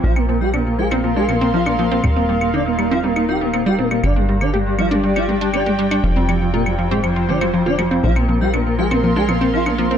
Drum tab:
CL |-x--x--x--x--x--|x--x--x--x--x--x|x--x--x--x--x--x|--x--x--x--x--x-|

CL |-x--x--x--x--x--|